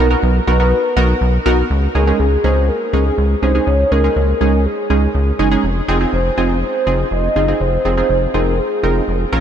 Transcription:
0.00 analog synth bass B1
0.11 analog polysynth B3 D#4 F#4 A#4
0.23 analog synth bass B1, soft synth lead B4
0.47 analog synth bass B1, analog polysynth B3 D#4 F#4 A#4
0.60 analog polysynth B3 D#4 F#4 A#4
0.97 analog synth bass B1, analog polysynth B3 D#4 F#4 A#4
1.21 analog synth bass B1
1.46 analog synth bass B1, analog polysynth B3 D#4 F#4 A#4
1.70 analog synth bass C#2
1.95 analog synth bass C#2, analog polysynth G#3 C#4 D#4 G#4, soft synth lead A#4
2.07 analog polysynth G#3 C#4 D#4 G#4
2.20 analog synth bass C#2, soft synth lead G#4
2.44 analog synth bass C#2, analog polysynth G#3 C#4 D#4 G#4, soft synth lead C5
2.69 soft synth lead A#4
2.93 analog synth bass C#2, analog polysynth G#3 C#4 D#4 G#4
3.06 soft synth lead G#4
3.18 analog synth bass C#2
3.42 analog synth bass C2, analog polysynth G#3 C#4 D#4 G#4, soft synth lead C5
3.55 analog polysynth G#3 C#4 D#4 G#4
3.67 analog synth bass C#2, soft synth lead C#5
3.92 analog synth bass C#2, analog polysynth G#3 C#4 D#4 G#4, soft synth lead A#4
4.04 analog polysynth G#3 C#4 D#4 G#4
4.16 analog synth bass C#2
4.41 analog synth bass C#2, analog polysynth G#3 C#4 D#4 G#4
4.65 soft synth lead G#4
4.90 analog synth bass C#2, analog polysynth G#3 C#4 D#4 G#4
5.15 analog synth bass C#2
5.39 analog synth bass F#1, analog polysynth G#3 C#4 D#4 G#4
5.51 analog polysynth G#3 C#4 D#4 G#4
5.64 analog synth bass F1
5.88 analog synth bass F1, analog polysynth C4 D#4 F4 G#4
6.01 analog polysynth C4 D#4 F4 G#4
6.13 analog synth bass F1, soft synth lead C5
6.38 analog synth bass F1, analog polysynth C4 D#4 F4 G#4
6.62 soft synth lead C5
6.87 analog synth bass F1, analog polysynth C4 D#4 F4 G#4
7.11 analog synth bass F1, soft synth lead D#5
7.36 analog synth bass F#1, analog polysynth C4 D#4 F4 G#4
7.48 analog polysynth C4 D#4 F4 G#4
7.61 analog synth bass F1, soft synth lead C5
7.85 analog synth bass F1, analog polysynth C4 D#4 F4 G#4
7.97 analog polysynth C4 D#4 F4 G#4, soft synth lead C5
8.10 analog synth bass F1
8.34 analog synth bass F1, analog polysynth C4 D#4 F4 G#4, soft synth lead A#4
8.59 soft synth lead G#4
8.83 analog synth bass F1, analog polysynth C4 D#4 F4 A#4
9.08 analog synth bass F1
9.33 analog synth bass A#1, analog polysynth C4 C#4 F4 A#4

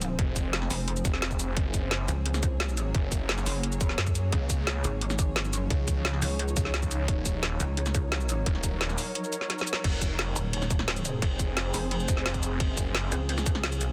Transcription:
Already playing: wobble bass D#1, synth drone F3 C4 G#4 C5
0.01 closed hi-hat, shaker
0.19 detuned saw bass F1, kick, closed hi-hat
0.36 kick, closed hi-hat, shaker
0.53 snare, closed hi-hat
0.62 snare
0.70 wobble bass F1, open hi-hat, shaker
0.88 closed hi-hat
0.96 shaker
1.05 detuned saw bass F1, kick, closed hi-hat, shaker
1.14 snare
1.22 snare, closed hi-hat
1.31 kick, shaker
1.39 closed hi-hat, shaker
1.57 detuned saw bass F#1, synth drone F#3 A#3 C#5, kick, closed hi-hat
1.74 kick, closed hi-hat, shaker
1.91 snare, closed hi-hat
2.08 wobble bass C#2, closed hi-hat, shaker
2.26 closed hi-hat
2.34 snare, shaker
2.43 kick, closed hi-hat, shaker
2.60 snare, closed hi-hat
2.69 shaker
2.77 closed hi-hat, shaker
2.95 detuned saw bass F#1, kick, closed hi-hat
3.12 kick, closed hi-hat, shaker
3.29 snare, closed hi-hat
3.38 snare, shaker
3.46 wobble bass F#1, open hi-hat, shaker
3.63 closed hi-hat
3.72 shaker
3.81 kick, closed hi-hat, shaker
3.89 snare
3.98 wobble bass F#2, snare, closed hi-hat
4.07 kick, shaker
4.15 closed hi-hat, shaker
4.32 detuned saw bass C#2, synth drone F3 D#4 C#5, kick, closed hi-hat
4.50 kick, closed hi-hat, shaker
4.67 snare, closed hi-hat
4.84 wobble bass G#1, closed hi-hat, shaker
5.01 closed hi-hat
5.10 snare, shaker
5.19 kick, closed hi-hat, shaker
5.36 snare, closed hi-hat
5.44 wobble bass G1, shaker
5.53 closed hi-hat, shaker
5.70 detuned saw bass C#2, kick, closed hi-hat
5.88 kick, closed hi-hat, shaker
6.05 snare, closed hi-hat
6.14 snare
6.22 wobble bass C#2, open hi-hat, shaker
6.39 closed hi-hat
6.48 shaker
6.57 detuned saw bass C#2, kick, closed hi-hat, shaker
6.65 snare
6.74 snare, closed hi-hat
6.83 kick, shaker
6.91 closed hi-hat, shaker
7.08 detuned saw bass D#1, synth drone F#3 A#4 C#5, kick, closed hi-hat
7.26 kick, closed hi-hat, shaker
7.43 snare, closed hi-hat
7.60 wobble bass C#2, closed hi-hat, shaker
7.77 closed hi-hat
7.86 snare, shaker
7.95 kick, closed hi-hat, shaker
8.12 snare, closed hi-hat
8.20 shaker
8.29 closed hi-hat, shaker
8.46 detuned saw bass D#1, kick, closed hi-hat
8.55 snare
8.63 kick, closed hi-hat, shaker
8.81 snare, closed hi-hat
8.89 snare, shaker
8.98 open hi-hat, shaker
9.15 closed hi-hat
9.24 shaker
9.33 closed hi-hat, shaker
9.41 snare
9.50 snare, closed hi-hat
9.58 snare, shaker
9.67 closed hi-hat, shaker
9.73 snare
9.84 detuned saw bass F1, synth drone F3 C4 G#4 C5, kick, closed hi-hat, ride bell, crash
10.02 kick, closed hi-hat, ride bell, shaker
10.19 snare, closed hi-hat, ride bell
10.36 wobble bass D#1, closed hi-hat, ride bell, shaker
10.53 closed hi-hat, ride bell
10.62 snare, shaker
10.70 kick, closed hi-hat, ride bell, shaker
10.79 snare
10.88 snare, closed hi-hat, ride bell
10.96 closed hi-hat, shaker
11.05 closed hi-hat, ride bell, shaker
11.22 detuned saw bass F1, kick, closed hi-hat, ride bell
11.39 kick, closed hi-hat, ride bell, shaker
11.57 snare, closed hi-hat, ride bell
11.74 wobble bass F1, open hi-hat, ride bell, shaker
11.91 closed hi-hat, ride bell
12.00 shaker
12.08 detuned saw bass F1, kick, closed hi-hat, ride bell, shaker
12.17 snare
12.26 snare, closed hi-hat, ride bell
12.34 kick, closed hi-hat, shaker
12.43 closed hi-hat, ride bell, shaker
12.60 detuned saw bass F#1, synth drone F#3 A#3 G#4 C#5, kick, closed hi-hat, ride bell
12.77 kick, closed hi-hat, ride bell, shaker
12.95 snare, closed hi-hat, ride bell
13.12 wobble bass C#2, closed hi-hat, ride bell, shaker
13.29 closed hi-hat, ride bell
13.38 snare, shaker
13.46 kick, closed hi-hat, ride bell, shaker
13.55 snare
13.64 snare, closed hi-hat, ride bell
13.72 wobble bass C2, closed hi-hat, shaker
13.81 closed hi-hat, ride bell, shaker

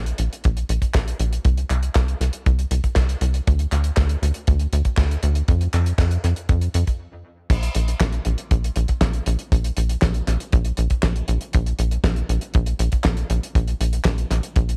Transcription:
Already playing: analog synth bass A#1
0.06 closed hi-hat
0.18 analog synth bass A#1, closed hi-hat
0.33 closed hi-hat
0.44 analog synth bass A#1, kick, closed hi-hat
0.57 closed hi-hat
0.69 analog synth bass A#1, closed hi-hat
0.82 kick, closed hi-hat
0.94 analog synth bass A#1, kick, snare, clap, closed hi-hat
1.08 closed hi-hat
1.20 analog synth bass A#1, closed hi-hat
1.33 closed hi-hat
1.45 analog synth bass C2, kick, closed hi-hat
1.58 closed hi-hat
1.70 analog synth bass C2, clap, closed hi-hat
1.83 closed hi-hat
1.95 analog synth bass C2, kick, snare, clap, closed hi-hat
2.08 closed hi-hat
2.21 analog synth bass C2, snare, closed hi-hat
2.33 closed hi-hat
2.46 analog synth bass C2, kick, closed hi-hat
2.59 closed hi-hat
2.71 analog synth bass C2, closed hi-hat
2.84 kick, closed hi-hat
2.95 analog synth bass C2, kick, snare, clap, closed hi-hat
3.09 closed hi-hat
3.21 analog synth bass C2, closed hi-hat
3.34 closed hi-hat
3.47 analog synth bass D2, kick, closed hi-hat
3.59 closed hi-hat
3.72 analog synth bass D2, clap, closed hi-hat
3.84 closed hi-hat
3.97 analog synth bass D2, kick, snare, clap, closed hi-hat
4.09 closed hi-hat
4.22 analog synth bass D2, closed hi-hat
4.34 closed hi-hat
4.47 analog synth bass D2, kick, closed hi-hat
4.59 closed hi-hat
4.73 analog synth bass D2, closed hi-hat
4.85 kick, closed hi-hat
4.97 analog synth bass D2, kick, snare, clap, closed hi-hat
5.11 closed hi-hat
5.23 analog synth bass D2, closed hi-hat
5.35 closed hi-hat
5.48 analog synth bass F2, kick, closed hi-hat
5.61 closed hi-hat
5.73 analog synth bass F2, clap, closed hi-hat
5.86 closed hi-hat
5.98 analog synth bass F2, kick, snare, clap, closed hi-hat
6.11 closed hi-hat
6.24 analog synth bass F2, snare, closed hi-hat
6.36 closed hi-hat
6.49 analog synth bass F2, kick, closed hi-hat
6.61 closed hi-hat
6.74 analog synth bass F2, closed hi-hat
6.87 kick, closed hi-hat
7.50 analog synth bass A#1, kick, closed hi-hat, crash
7.63 closed hi-hat
7.75 analog synth bass A#1, closed hi-hat
7.88 closed hi-hat
8.00 analog synth bass A#1, kick, snare, clap, closed hi-hat
8.12 closed hi-hat
8.25 analog synth bass A#1, closed hi-hat
8.38 closed hi-hat
8.51 analog synth bass A#1, kick, closed hi-hat
8.64 closed hi-hat
8.76 analog synth bass A#1, closed hi-hat
8.88 kick, closed hi-hat
9.01 analog synth bass A#1, kick, snare, clap, closed hi-hat
9.13 closed hi-hat
9.26 analog synth bass A#1, closed hi-hat
9.39 closed hi-hat
9.52 analog synth bass A#1, kick, closed hi-hat
9.64 closed hi-hat
9.77 analog synth bass A#1, closed hi-hat
9.89 closed hi-hat
10.02 analog synth bass A#1, kick, snare, clap, closed hi-hat
10.14 closed hi-hat
10.27 analog synth bass A#1, snare, clap, closed hi-hat
10.40 closed hi-hat
10.52 analog synth bass A#1, kick, closed hi-hat
10.65 closed hi-hat
10.77 analog synth bass A#1, closed hi-hat
10.90 kick, closed hi-hat
11.03 analog synth bass A#1, kick, snare, clap, closed hi-hat
11.16 closed hi-hat
11.28 analog synth bass A#1, closed hi-hat
11.41 closed hi-hat
11.53 analog synth bass A#1, kick, closed hi-hat
11.66 closed hi-hat
11.79 analog synth bass A#1, closed hi-hat
11.91 closed hi-hat
12.04 analog synth bass A#1, kick, snare, clap, closed hi-hat
12.16 closed hi-hat
12.29 analog synth bass A#1, closed hi-hat
12.41 closed hi-hat
12.54 analog synth bass A#1, kick, closed hi-hat
12.66 closed hi-hat
12.79 analog synth bass A#1, closed hi-hat
12.92 kick, closed hi-hat
13.04 analog synth bass A#1, kick, snare, clap, closed hi-hat
13.17 closed hi-hat
13.30 analog synth bass A#1, closed hi-hat
13.43 closed hi-hat
13.55 analog synth bass A#1, kick, closed hi-hat
13.68 closed hi-hat
13.81 analog synth bass A#1, closed hi-hat
13.93 closed hi-hat
14.05 analog synth bass A#1, kick, snare, clap, closed hi-hat
14.18 closed hi-hat
14.31 analog synth bass A#1, snare, clap, closed hi-hat
14.43 closed hi-hat
14.56 analog synth bass A#1, kick, closed hi-hat
14.69 closed hi-hat

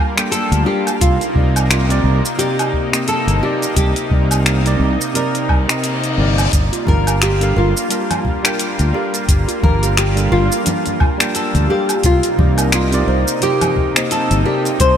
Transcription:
Already playing: tine electric piano G3 D4 A#4 F5 A5, analog synth pad G3 A#3 F4, nylon-string guitar A#4
0.16 tine electric piano G3 A#3 D4 A4 G5, finger snap, shaker
0.31 nylon-string guitar A4, closed hi-hat, shaker
0.52 fretless electric bass D2, closed hi-hat, shaker
0.65 tine electric piano G3 D4 A4 A#4 F5, nylon-string guitar G4
0.87 closed hi-hat, low woodblock, shaker
1.01 fretless electric bass C2, analog synth pad C3 A#3 D#4, nylon-string guitar F4, kick, closed hi-hat, shaker
1.21 closed hi-hat, shaker
1.34 fretless electric bass C2, tine electric piano C3 C4 D#4 A#4 D5, kick
1.56 closed hi-hat, low woodblock, shaker
1.70 nylon-string guitar F4, finger snap, closed hi-hat, shaker
1.88 tine electric piano C3 C4 D#4 A#4 D5, closed hi-hat, shaker
2.04 fretless electric bass C2
2.25 shaker
2.38 tine electric piano C3 C4 D#4 A#4 D5, nylon-string guitar G4, closed hi-hat, shaker
2.59 closed hi-hat, low woodblock, shaker
2.73 kick
2.92 tine electric piano C3 A#3 C4 D#4 D#5, finger snap, shaker
3.08 nylon-string guitar A4, closed hi-hat, shaker
3.27 fretless electric bass G1, closed hi-hat, shaker
3.42 tine electric piano C3 C4 D#4 A#4 D5, nylon-string guitar G4
3.62 closed hi-hat, shaker
3.76 fretless electric bass C2, nylon-string guitar G4, kick, closed hi-hat, shaker
3.96 closed hi-hat, shaker
4.10 fretless electric bass C2, tine electric piano C3 C4 D#4 A#4 D5, kick
4.31 closed hi-hat, low woodblock, shaker
4.46 finger snap, closed hi-hat, shaker
4.64 tine electric piano C3 C4 D#4 A#4 D5, closed hi-hat, shaker
4.80 fretless electric bass C2
5.01 shaker
5.14 tine electric piano C3 C4 D#4 A#4 D5, nylon-string guitar A#4, closed hi-hat, reverse cymbal, shaker
5.35 closed hi-hat, shaker
5.49 fretless electric bass C2, kick, low woodblock
5.68 tine electric piano C3 C4 D#4 A#4 D#5, finger snap, closed hi-hat, shaker
5.84 closed hi-hat, shaker
6.04 closed hi-hat, shaker
6.17 fretless electric bass G1, tine electric piano C3 C4 D#4 A#4 D5
6.38 closed hi-hat, low woodblock, shaker
6.53 fretless electric bass G1, analog synth pad G3 A#3 F4, kick, closed hi-hat, shaker
6.73 kalimba F4, closed hi-hat, shaker
6.86 fretless electric bass G1, tine electric piano G3 D4 A#4 F5 A5, nylon-string guitar A#4, kick, high conga
7.07 kalimba G4, closed hi-hat, low woodblock, shaker
7.22 nylon-string guitar G4, finger snap, closed hi-hat, shaker
7.40 tine electric piano G3 D4 A4 A#4 F5, closed hi-hat, shaker
7.56 fretless electric bass G1, nylon-string guitar F4, kalimba A#4
7.77 shaker
7.89 tine electric piano G3 D4 A#4 F5 A5, closed hi-hat, shaker
8.11 kalimba D5, closed hi-hat, high conga, low woodblock, shaker
8.25 kick, low conga
8.43 tine electric piano G3 D4 A#4 G5 A5, kalimba A#4, finger snap, shaker
8.59 closed hi-hat, shaker
8.79 fretless electric bass D2, closed hi-hat, shaker
8.93 tine electric piano G3 D4 A4 A#4 F5, kalimba G4
9.14 closed hi-hat, shaker
9.28 fretless electric bass G1, kick, closed hi-hat, shaker
9.48 kalimba F4, closed hi-hat, shaker
9.62 fretless electric bass G1, tine electric piano G3 D4 A#4 F5 A5, nylon-string guitar A#4, kick, high conga
9.83 kalimba G4, closed hi-hat, shaker
9.97 nylon-string guitar G4, finger snap, closed hi-hat, shaker
10.15 tine electric piano G3 D4 A4 A#4 F5, closed hi-hat, shaker
10.32 fretless electric bass G1, nylon-string guitar F4, kalimba A#4
10.52 shaker
10.64 tine electric piano G3 D4 A#4 F5 A5, closed hi-hat, high conga, shaker
10.86 kalimba D5, closed hi-hat, high conga, shaker
11.00 kick, low conga, low woodblock
11.18 tine electric piano G3 A#3 D4 G5 A5, kalimba A#4, finger snap, shaker
11.35 nylon-string guitar A4, closed hi-hat, shaker
11.54 fretless electric bass D2, closed hi-hat, high conga, shaker
11.68 tine electric piano G3 D4 A4 A#4 F5, kalimba G4, nylon-string guitar G4
11.89 closed hi-hat, low woodblock, shaker
12.03 fretless electric bass C2, analog synth pad C3 A#3 D#4, nylon-string guitar F4, kick, closed hi-hat, shaker
12.23 kalimba G4, closed hi-hat, shaker
12.37 fretless electric bass C2, tine electric piano C3 C4 D#4 A#4 D5, kick, high conga
12.58 kalimba A#4, closed hi-hat, low woodblock, shaker
12.72 nylon-string guitar F4, finger snap, closed hi-hat, shaker
12.91 tine electric piano C3 C4 D#4 A#4 D5, closed hi-hat, shaker
13.07 fretless electric bass C2, kalimba C5
13.28 shaker
13.40 tine electric piano C3 C4 D#4 A#4 D6, nylon-string guitar G4, closed hi-hat, shaker
13.61 kalimba D#5, closed hi-hat, high conga, low woodblock, shaker
13.76 kick, low conga
13.94 tine electric piano C3 A#3 C4 D#4 D#5, kalimba C5, finger snap, shaker
14.11 nylon-string guitar A4, closed hi-hat, shaker
14.31 fretless electric bass G1, closed hi-hat, shaker
14.44 tine electric piano C3 C4 D#4 A#4 D5, nylon-string guitar G4, kalimba A#4
14.65 closed hi-hat, shaker
14.80 fretless electric bass C2, nylon-string guitar C5, kick, closed hi-hat, shaker

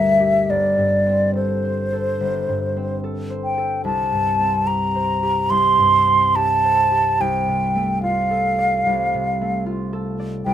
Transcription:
Already playing: harp G1 D2 G3 G4 A#4, flute E5
0.20 harp G4
0.49 harp G1, flute D5
0.78 harp G2
1.06 harp C4
1.35 harp A4, flute C5
1.64 harp C5
1.93 harp A4
2.21 harp G1
2.49 harp G2
2.77 harp C4
3.04 harp A4
3.30 harp C5
3.44 flute G5
3.58 harp A4
3.85 harp C2, flute A5
4.12 harp G2
4.40 harp C4
4.67 harp G4, flute A#5
4.95 harp C5
5.23 harp G4
5.50 harp C2, flute C6
5.78 harp G2
6.07 harp C4
6.36 harp G4, flute A5
6.64 harp C5
6.92 harp G4
7.20 harp C2, flute G5
7.48 harp C3
7.75 harp A3
8.03 harp F4, flute F5
8.31 harp A4
8.59 harp D5
8.86 harp C2
9.14 harp C3
9.41 harp A3
9.66 harp F4
9.93 harp A4
10.20 harp D5
10.46 harp C2, flute G5

